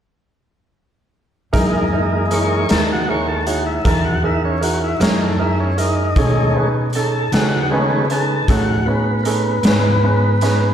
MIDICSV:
0, 0, Header, 1, 5, 480
1, 0, Start_track
1, 0, Tempo, 771208
1, 958, Time_signature, 12, 3, 24, 8
1, 6683, End_track
2, 0, Start_track
2, 0, Title_t, "Upright piano"
2, 0, Program_c, 0, 0
2, 950, Note_on_c, 0, 63, 67
2, 950, Note_on_c, 0, 64, 59
2, 951, Note_on_c, 0, 70, 70
2, 955, Note_on_c, 0, 68, 59
2, 1134, Note_off_c, 0, 63, 0
2, 1134, Note_off_c, 0, 64, 0
2, 1135, Note_off_c, 0, 70, 0
2, 1137, Note_off_c, 0, 68, 0
2, 1198, Note_on_c, 0, 64, 51
2, 1200, Note_on_c, 0, 68, 44
2, 1201, Note_on_c, 0, 70, 59
2, 1202, Note_on_c, 0, 63, 56
2, 1379, Note_off_c, 0, 64, 0
2, 1380, Note_off_c, 0, 63, 0
2, 1380, Note_off_c, 0, 68, 0
2, 1380, Note_off_c, 0, 70, 0
2, 1436, Note_on_c, 0, 63, 48
2, 1439, Note_on_c, 0, 68, 46
2, 1440, Note_on_c, 0, 64, 46
2, 1442, Note_on_c, 0, 70, 54
2, 1618, Note_off_c, 0, 63, 0
2, 1619, Note_off_c, 0, 64, 0
2, 1619, Note_off_c, 0, 68, 0
2, 1620, Note_off_c, 0, 70, 0
2, 1672, Note_on_c, 0, 68, 44
2, 1673, Note_on_c, 0, 63, 45
2, 1675, Note_on_c, 0, 64, 42
2, 1675, Note_on_c, 0, 70, 54
2, 1855, Note_off_c, 0, 68, 0
2, 1856, Note_off_c, 0, 63, 0
2, 1857, Note_off_c, 0, 64, 0
2, 1857, Note_off_c, 0, 70, 0
2, 1917, Note_on_c, 0, 63, 45
2, 1918, Note_on_c, 0, 68, 46
2, 1920, Note_on_c, 0, 64, 45
2, 1920, Note_on_c, 0, 70, 51
2, 2098, Note_off_c, 0, 63, 0
2, 2098, Note_off_c, 0, 68, 0
2, 2100, Note_off_c, 0, 64, 0
2, 2100, Note_off_c, 0, 70, 0
2, 2154, Note_on_c, 0, 64, 42
2, 2158, Note_on_c, 0, 63, 46
2, 2159, Note_on_c, 0, 73, 49
2, 2160, Note_on_c, 0, 68, 42
2, 2336, Note_off_c, 0, 64, 0
2, 2338, Note_off_c, 0, 63, 0
2, 2339, Note_off_c, 0, 68, 0
2, 2339, Note_off_c, 0, 73, 0
2, 2393, Note_on_c, 0, 70, 55
2, 2396, Note_on_c, 0, 68, 48
2, 2397, Note_on_c, 0, 63, 47
2, 2398, Note_on_c, 0, 64, 46
2, 2576, Note_off_c, 0, 70, 0
2, 2577, Note_off_c, 0, 68, 0
2, 2578, Note_off_c, 0, 63, 0
2, 2578, Note_off_c, 0, 64, 0
2, 2633, Note_on_c, 0, 68, 45
2, 2635, Note_on_c, 0, 64, 43
2, 2636, Note_on_c, 0, 63, 49
2, 2640, Note_on_c, 0, 70, 47
2, 2816, Note_off_c, 0, 68, 0
2, 2817, Note_off_c, 0, 63, 0
2, 2817, Note_off_c, 0, 64, 0
2, 2819, Note_off_c, 0, 70, 0
2, 2871, Note_on_c, 0, 70, 53
2, 2873, Note_on_c, 0, 63, 45
2, 2873, Note_on_c, 0, 68, 43
2, 2876, Note_on_c, 0, 64, 43
2, 3055, Note_off_c, 0, 70, 0
2, 3056, Note_off_c, 0, 63, 0
2, 3056, Note_off_c, 0, 68, 0
2, 3057, Note_off_c, 0, 64, 0
2, 3114, Note_on_c, 0, 68, 40
2, 3115, Note_on_c, 0, 63, 53
2, 3116, Note_on_c, 0, 70, 57
2, 3119, Note_on_c, 0, 64, 44
2, 3296, Note_off_c, 0, 68, 0
2, 3297, Note_off_c, 0, 63, 0
2, 3297, Note_off_c, 0, 70, 0
2, 3299, Note_off_c, 0, 64, 0
2, 3353, Note_on_c, 0, 63, 53
2, 3353, Note_on_c, 0, 64, 49
2, 3356, Note_on_c, 0, 68, 45
2, 3357, Note_on_c, 0, 70, 54
2, 3536, Note_off_c, 0, 63, 0
2, 3536, Note_off_c, 0, 64, 0
2, 3537, Note_off_c, 0, 68, 0
2, 3538, Note_off_c, 0, 70, 0
2, 3595, Note_on_c, 0, 63, 45
2, 3596, Note_on_c, 0, 70, 53
2, 3597, Note_on_c, 0, 64, 42
2, 3597, Note_on_c, 0, 68, 42
2, 3777, Note_off_c, 0, 63, 0
2, 3778, Note_off_c, 0, 64, 0
2, 3778, Note_off_c, 0, 68, 0
2, 3778, Note_off_c, 0, 70, 0
2, 3844, Note_on_c, 0, 68, 51
2, 3847, Note_on_c, 0, 61, 51
2, 3847, Note_on_c, 0, 63, 48
2, 3850, Note_on_c, 0, 69, 59
2, 4022, Note_off_c, 0, 68, 0
2, 4023, Note_off_c, 0, 61, 0
2, 4023, Note_off_c, 0, 63, 0
2, 4025, Note_off_c, 0, 69, 0
2, 4085, Note_on_c, 0, 63, 43
2, 4086, Note_on_c, 0, 68, 48
2, 4086, Note_on_c, 0, 71, 52
2, 4087, Note_on_c, 0, 61, 45
2, 4262, Note_off_c, 0, 63, 0
2, 4262, Note_off_c, 0, 68, 0
2, 4262, Note_off_c, 0, 71, 0
2, 4263, Note_off_c, 0, 61, 0
2, 4330, Note_on_c, 0, 68, 45
2, 4331, Note_on_c, 0, 61, 47
2, 4331, Note_on_c, 0, 63, 51
2, 4335, Note_on_c, 0, 69, 61
2, 4504, Note_off_c, 0, 68, 0
2, 4505, Note_off_c, 0, 61, 0
2, 4505, Note_off_c, 0, 63, 0
2, 4507, Note_off_c, 0, 69, 0
2, 4563, Note_on_c, 0, 63, 47
2, 4567, Note_on_c, 0, 61, 49
2, 4568, Note_on_c, 0, 68, 46
2, 4570, Note_on_c, 0, 69, 55
2, 4741, Note_off_c, 0, 63, 0
2, 4743, Note_off_c, 0, 61, 0
2, 4743, Note_off_c, 0, 68, 0
2, 4745, Note_off_c, 0, 69, 0
2, 4809, Note_on_c, 0, 61, 54
2, 4809, Note_on_c, 0, 68, 48
2, 4812, Note_on_c, 0, 63, 48
2, 4812, Note_on_c, 0, 71, 53
2, 4984, Note_off_c, 0, 61, 0
2, 4984, Note_off_c, 0, 68, 0
2, 4985, Note_off_c, 0, 63, 0
2, 4985, Note_off_c, 0, 71, 0
2, 5043, Note_on_c, 0, 61, 46
2, 5045, Note_on_c, 0, 68, 46
2, 5047, Note_on_c, 0, 71, 52
2, 5049, Note_on_c, 0, 63, 44
2, 5221, Note_off_c, 0, 61, 0
2, 5222, Note_off_c, 0, 68, 0
2, 5223, Note_off_c, 0, 71, 0
2, 5224, Note_off_c, 0, 63, 0
2, 5286, Note_on_c, 0, 61, 52
2, 5287, Note_on_c, 0, 68, 52
2, 5288, Note_on_c, 0, 69, 56
2, 5289, Note_on_c, 0, 63, 48
2, 5462, Note_off_c, 0, 61, 0
2, 5463, Note_off_c, 0, 68, 0
2, 5463, Note_off_c, 0, 69, 0
2, 5464, Note_off_c, 0, 63, 0
2, 5522, Note_on_c, 0, 61, 52
2, 5527, Note_on_c, 0, 71, 48
2, 5528, Note_on_c, 0, 63, 43
2, 5529, Note_on_c, 0, 68, 44
2, 5700, Note_off_c, 0, 61, 0
2, 5703, Note_off_c, 0, 63, 0
2, 5703, Note_off_c, 0, 71, 0
2, 5704, Note_off_c, 0, 68, 0
2, 5762, Note_on_c, 0, 61, 50
2, 5762, Note_on_c, 0, 63, 49
2, 5763, Note_on_c, 0, 68, 48
2, 5768, Note_on_c, 0, 69, 52
2, 5940, Note_off_c, 0, 61, 0
2, 5940, Note_off_c, 0, 63, 0
2, 5941, Note_off_c, 0, 68, 0
2, 5943, Note_off_c, 0, 69, 0
2, 6005, Note_on_c, 0, 61, 49
2, 6006, Note_on_c, 0, 63, 46
2, 6006, Note_on_c, 0, 68, 45
2, 6007, Note_on_c, 0, 71, 55
2, 6181, Note_off_c, 0, 61, 0
2, 6182, Note_off_c, 0, 63, 0
2, 6182, Note_off_c, 0, 68, 0
2, 6182, Note_off_c, 0, 71, 0
2, 6247, Note_on_c, 0, 63, 50
2, 6249, Note_on_c, 0, 61, 48
2, 6252, Note_on_c, 0, 68, 47
2, 6252, Note_on_c, 0, 71, 57
2, 6422, Note_off_c, 0, 63, 0
2, 6423, Note_off_c, 0, 61, 0
2, 6425, Note_off_c, 0, 68, 0
2, 6425, Note_off_c, 0, 71, 0
2, 6485, Note_on_c, 0, 61, 59
2, 6485, Note_on_c, 0, 68, 57
2, 6487, Note_on_c, 0, 63, 54
2, 6491, Note_on_c, 0, 71, 64
2, 6661, Note_off_c, 0, 61, 0
2, 6661, Note_off_c, 0, 68, 0
2, 6662, Note_off_c, 0, 63, 0
2, 6664, Note_off_c, 0, 71, 0
2, 6683, End_track
3, 0, Start_track
3, 0, Title_t, "Tonewheel organ"
3, 0, Program_c, 1, 16
3, 969, Note_on_c, 1, 52, 52
3, 975, Note_on_c, 1, 56, 42
3, 977, Note_on_c, 1, 58, 44
3, 977, Note_on_c, 1, 63, 51
3, 1449, Note_on_c, 1, 73, 70
3, 1659, Note_off_c, 1, 52, 0
3, 1662, Note_off_c, 1, 56, 0
3, 1663, Note_off_c, 1, 58, 0
3, 1663, Note_off_c, 1, 63, 0
3, 1677, Note_off_c, 1, 73, 0
3, 1691, Note_on_c, 1, 69, 76
3, 1797, Note_off_c, 1, 69, 0
3, 1821, Note_on_c, 1, 66, 72
3, 1922, Note_off_c, 1, 66, 0
3, 1933, Note_on_c, 1, 73, 74
3, 2038, Note_off_c, 1, 73, 0
3, 2042, Note_on_c, 1, 69, 69
3, 2152, Note_off_c, 1, 69, 0
3, 2157, Note_on_c, 1, 66, 79
3, 2270, Note_off_c, 1, 66, 0
3, 2280, Note_on_c, 1, 64, 67
3, 2391, Note_off_c, 1, 64, 0
3, 2411, Note_on_c, 1, 69, 61
3, 2517, Note_off_c, 1, 69, 0
3, 2522, Note_on_c, 1, 66, 68
3, 2632, Note_off_c, 1, 66, 0
3, 2647, Note_on_c, 1, 64, 91
3, 2755, Note_off_c, 1, 64, 0
3, 2770, Note_on_c, 1, 61, 77
3, 2876, Note_off_c, 1, 61, 0
3, 2886, Note_on_c, 1, 66, 78
3, 2994, Note_off_c, 1, 66, 0
3, 3012, Note_on_c, 1, 64, 67
3, 3117, Note_off_c, 1, 64, 0
3, 3126, Note_on_c, 1, 61, 76
3, 3234, Note_off_c, 1, 61, 0
3, 3248, Note_on_c, 1, 57, 73
3, 3356, Note_off_c, 1, 57, 0
3, 3367, Note_on_c, 1, 64, 72
3, 3475, Note_off_c, 1, 64, 0
3, 3487, Note_on_c, 1, 61, 75
3, 3595, Note_off_c, 1, 61, 0
3, 3601, Note_on_c, 1, 63, 96
3, 3840, Note_on_c, 1, 51, 47
3, 3846, Note_on_c, 1, 56, 48
3, 3847, Note_on_c, 1, 61, 56
3, 3848, Note_on_c, 1, 57, 45
3, 4065, Note_off_c, 1, 63, 0
3, 4159, Note_off_c, 1, 51, 0
3, 4162, Note_off_c, 1, 56, 0
3, 4162, Note_off_c, 1, 61, 0
3, 4163, Note_off_c, 1, 57, 0
3, 4327, Note_on_c, 1, 69, 83
3, 4556, Note_off_c, 1, 69, 0
3, 4561, Note_on_c, 1, 66, 82
3, 4790, Note_on_c, 1, 56, 41
3, 4793, Note_off_c, 1, 66, 0
3, 4794, Note_on_c, 1, 51, 42
3, 4798, Note_on_c, 1, 57, 36
3, 4801, Note_on_c, 1, 59, 67
3, 4802, Note_on_c, 1, 61, 45
3, 5010, Note_off_c, 1, 56, 0
3, 5012, Note_off_c, 1, 51, 0
3, 5014, Note_off_c, 1, 57, 0
3, 5016, Note_off_c, 1, 61, 0
3, 5032, Note_off_c, 1, 59, 0
3, 5050, Note_on_c, 1, 69, 89
3, 5277, Note_off_c, 1, 69, 0
3, 5294, Note_on_c, 1, 66, 73
3, 5515, Note_on_c, 1, 59, 86
3, 5519, Note_off_c, 1, 66, 0
3, 5747, Note_on_c, 1, 58, 64
3, 5749, Note_off_c, 1, 59, 0
3, 5769, Note_on_c, 1, 59, 95
3, 5772, Note_off_c, 1, 58, 0
3, 6683, Note_off_c, 1, 59, 0
3, 6683, End_track
4, 0, Start_track
4, 0, Title_t, "Upright bass"
4, 0, Program_c, 2, 32
4, 954, Note_on_c, 2, 42, 77
4, 1655, Note_off_c, 2, 42, 0
4, 1682, Note_on_c, 2, 39, 72
4, 2379, Note_off_c, 2, 39, 0
4, 2397, Note_on_c, 2, 40, 77
4, 3097, Note_off_c, 2, 40, 0
4, 3112, Note_on_c, 2, 42, 88
4, 3814, Note_off_c, 2, 42, 0
4, 3837, Note_on_c, 2, 47, 78
4, 4536, Note_off_c, 2, 47, 0
4, 4556, Note_on_c, 2, 49, 83
4, 5255, Note_off_c, 2, 49, 0
4, 5279, Note_on_c, 2, 45, 78
4, 5977, Note_off_c, 2, 45, 0
4, 5993, Note_on_c, 2, 44, 83
4, 6683, Note_off_c, 2, 44, 0
4, 6683, End_track
5, 0, Start_track
5, 0, Title_t, "Drums"
5, 956, Note_on_c, 9, 42, 68
5, 958, Note_on_c, 9, 36, 94
5, 1018, Note_off_c, 9, 42, 0
5, 1020, Note_off_c, 9, 36, 0
5, 1437, Note_on_c, 9, 42, 53
5, 1499, Note_off_c, 9, 42, 0
5, 1674, Note_on_c, 9, 42, 75
5, 1685, Note_on_c, 9, 38, 96
5, 1737, Note_off_c, 9, 42, 0
5, 1747, Note_off_c, 9, 38, 0
5, 2157, Note_on_c, 9, 42, 50
5, 2219, Note_off_c, 9, 42, 0
5, 2397, Note_on_c, 9, 36, 95
5, 2397, Note_on_c, 9, 42, 80
5, 2459, Note_off_c, 9, 36, 0
5, 2459, Note_off_c, 9, 42, 0
5, 2879, Note_on_c, 9, 42, 57
5, 2941, Note_off_c, 9, 42, 0
5, 3117, Note_on_c, 9, 42, 69
5, 3128, Note_on_c, 9, 38, 91
5, 3179, Note_off_c, 9, 42, 0
5, 3190, Note_off_c, 9, 38, 0
5, 3597, Note_on_c, 9, 42, 55
5, 3660, Note_off_c, 9, 42, 0
5, 3834, Note_on_c, 9, 42, 68
5, 3836, Note_on_c, 9, 36, 95
5, 3896, Note_off_c, 9, 42, 0
5, 3898, Note_off_c, 9, 36, 0
5, 4312, Note_on_c, 9, 42, 49
5, 4374, Note_off_c, 9, 42, 0
5, 4559, Note_on_c, 9, 42, 70
5, 4569, Note_on_c, 9, 38, 96
5, 4621, Note_off_c, 9, 42, 0
5, 4632, Note_off_c, 9, 38, 0
5, 5041, Note_on_c, 9, 42, 48
5, 5103, Note_off_c, 9, 42, 0
5, 5279, Note_on_c, 9, 42, 79
5, 5280, Note_on_c, 9, 36, 97
5, 5342, Note_off_c, 9, 36, 0
5, 5342, Note_off_c, 9, 42, 0
5, 5759, Note_on_c, 9, 42, 64
5, 5821, Note_off_c, 9, 42, 0
5, 5996, Note_on_c, 9, 42, 72
5, 6006, Note_on_c, 9, 38, 91
5, 6058, Note_off_c, 9, 42, 0
5, 6068, Note_off_c, 9, 38, 0
5, 6481, Note_on_c, 9, 42, 61
5, 6492, Note_on_c, 9, 38, 30
5, 6543, Note_off_c, 9, 42, 0
5, 6554, Note_off_c, 9, 38, 0
5, 6683, End_track
0, 0, End_of_file